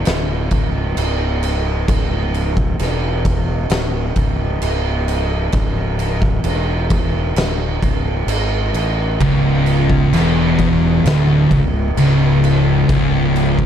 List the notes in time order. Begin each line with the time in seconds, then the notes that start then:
0.05 D1, snare, crash
0.51 C#1, kick, crash
0.96 C#1, crash
1.43 crash
1.88 C#1, kick, crash
2.34 crash
2.57 kick
2.79 E1, snare, crash
3.25 kick, crash
3.70 D1, snare, crash
4.16 C#1, kick, crash
4.62 C#1, crash
5.08 crash
5.52 C#1, kick, crash
5.99 crash
6.22 kick
6.44 E1, crash
6.90 kick, crash
7.36 D1, snare, crash
7.83 C#1, kick, crash
8.26 G#1, crash
8.73 A1, crash
9.20 C#1 C#2, kick, crash
9.66 crash
9.90 kick
10.12 E1 E2, snare, crash
10.59 kick, crash
11.03 D1 D2, crash
11.08 snare
11.51 C#1 C#2, kick, crash
11.95 C#1 C#2, crash
12.44 crash
12.89 C#1 C#2, kick, crash
13.36 crash
13.59 kick